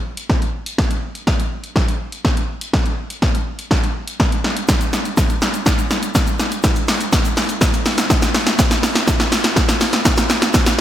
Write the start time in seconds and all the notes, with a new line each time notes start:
0.17 closed hi-hat
0.30 kick, snare
0.42 closed hi-hat
0.66 closed hi-hat
0.78 kick, snare
0.91 closed hi-hat
1.15 closed hi-hat
1.27 kick, snare
1.40 closed hi-hat
1.64 closed hi-hat
1.76 kick, snare
1.88 closed hi-hat
2.12 closed hi-hat
2.25 kick, snare
2.37 closed hi-hat
2.61 closed hi-hat
2.73 kick, snare
2.86 closed hi-hat
3.10 closed hi-hat
3.22 kick, snare
3.35 closed hi-hat
3.59 closed hi-hat
3.71 kick, snare
3.84 closed hi-hat
4.08 closed hi-hat
4.20 kick, snare
4.32 closed hi-hat
4.44 snare
4.57 closed hi-hat
4.68 kick, snare, shaker
4.81 closed hi-hat, shaker
4.93 snare, shaker
5.05 closed hi-hat, shaker
5.17 kick, snare, shaker
5.30 closed hi-hat, shaker
5.42 snare, shaker
5.54 closed hi-hat, shaker
5.66 kick, snare, shaker
5.79 closed hi-hat, shaker
5.90 snare, shaker
6.03 closed hi-hat, shaker
6.15 kick, snare, shaker
6.27 closed hi-hat, shaker
6.39 snare, shaker
6.51 closed hi-hat, shaker
6.63 kick, snare, shaker
6.76 closed hi-hat, shaker
6.88 snare, open hi-hat, shaker
7.00 closed hi-hat, shaker
7.12 kick, snare, shaker
7.25 closed hi-hat, shaker
7.37 snare, open hi-hat, shaker
7.49 closed hi-hat, shaker
7.61 kick, snare, shaker
7.74 closed hi-hat, shaker
7.86 snare, open hi-hat, shaker
7.98 snare, closed hi-hat, shaker
8.10 kick, snare, shaker
8.22 snare, closed hi-hat, shaker
8.34 snare, open hi-hat, shaker
8.47 snare, closed hi-hat, shaker
8.59 kick, snare, shaker
8.71 snare, closed hi-hat, shaker
8.83 snare, open hi-hat, shaker
8.95 snare, closed hi-hat, shaker
9.08 kick, snare, shaker
9.20 snare, closed hi-hat, shaker
9.32 snare, open hi-hat, shaker
9.44 snare, closed hi-hat, shaker
9.56 kick, snare, shaker
9.69 snare, closed hi-hat, shaker
9.81 snare, open hi-hat, shaker
9.93 snare, closed hi-hat, shaker
10.05 kick, snare, shaker
10.17 snare, closed hi-hat, shaker
10.30 snare, open hi-hat, shaker
10.42 snare, closed hi-hat, shaker
10.54 kick, snare, shaker
10.66 snare, closed hi-hat, shaker